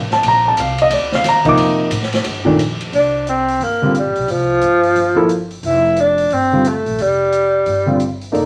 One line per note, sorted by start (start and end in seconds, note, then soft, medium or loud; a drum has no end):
0.00 0.22 A1 medium
0.11 0.24 A5 medium
0.11 snare soft
0.23 0.55 A#1 medium
0.23 ride medium
0.28 0.46 A#5 medium
0.48 0.58 A5 medium
0.57 0.89 C2 medium
0.57 0.79 F5 medium
0.57 hi-hat pedal medium
0.57 ride medium
0.78 0.92 D#5 medium
0.78 ride medium
0.90 1.23 D2 medium
0.90 1.12 D5 medium
0.90 ride medium
1.12 1.25 F5 loud
1.12 snare soft
1.24 1.56 D#2 medium
1.24 snare soft
1.24 hi-hat pedal soft
1.24 ride medium
1.28 1.47 A#5 medium
1.44 1.88 C3 medium
1.44 1.89 F3 medium
1.44 1.89 A#3 medium
1.44 1.89 D#4 medium
1.44 kick medium
1.44 ride soft
1.48 2.23 D6 medium
1.57 1.90 F2 medium
1.57 ride medium
1.91 2.24 A2 medium
1.91 hi-hat pedal medium
1.91 ride medium
2.03 snare soft
2.13 snare medium
2.13 ride soft
2.24 2.57 G2 medium
2.24 ride medium
2.45 2.57 A#2 medium
2.45 2.57 D#3 medium
2.45 2.57 A3 medium
2.45 2.57 D4 medium
2.45 kick soft
2.58 2.91 F2 medium
2.58 hi-hat pedal medium
2.58 ride medium
2.81 ride medium
2.93 3.57 C2 medium
2.93 3.25 D4 medium
2.93 open hi-hat soft
3.27 3.65 C4 medium
3.27 closed hi-hat medium
3.48 open hi-hat soft
3.60 4.02 G1 medium
3.60 3.95 A#3 medium
3.60 open hi-hat soft
3.82 3.93 D3 medium
3.82 3.93 G3 medium
3.82 3.93 C4 medium
3.82 3.94 F4 medium
3.95 4.33 G3 medium
3.95 closed hi-hat soft
4.05 4.15 A#1 medium
4.16 4.27 B1 medium
4.16 open hi-hat soft
4.28 4.59 C2 medium
4.28 5.52 F3 loud
4.28 open hi-hat soft
4.61 4.93 G2 medium
4.61 closed hi-hat soft
4.83 open hi-hat soft
4.96 5.60 G1 medium
4.96 open hi-hat soft
5.15 5.27 F3 medium
5.15 5.27 A#3 medium
5.15 5.28 E4 medium
5.15 5.28 A4 medium
5.29 closed hi-hat soft
5.51 open hi-hat soft
5.63 6.27 F1 medium
5.63 6.02 E4 medium
5.63 open hi-hat soft
5.97 6.35 D4 loud
5.97 closed hi-hat soft
6.18 open hi-hat soft
6.30 6.82 G1 medium
6.30 6.69 C4 medium
6.30 open hi-hat soft
6.52 6.63 D3 medium
6.52 6.64 G3 soft
6.52 6.64 C4 medium
6.52 6.64 F4 medium
6.65 7.03 A3 medium
6.65 closed hi-hat soft
6.86 6.98 A#1 medium
6.86 open hi-hat soft
6.98 7.63 F1 medium
6.98 8.23 G3 medium
6.98 open hi-hat soft
7.33 closed hi-hat soft
7.66 8.31 G1 medium
7.66 open hi-hat soft
7.86 7.98 D3 medium
7.86 7.99 G3 medium
7.86 7.99 C4 medium
7.86 7.99 F4 medium
8.00 closed hi-hat soft
8.21 open hi-hat soft
8.32 8.46 F1 medium
8.32 8.46 A#3 medium
8.32 8.46 D#4 medium
8.32 8.46 A4 soft
8.32 8.46 D5 medium
8.32 open hi-hat soft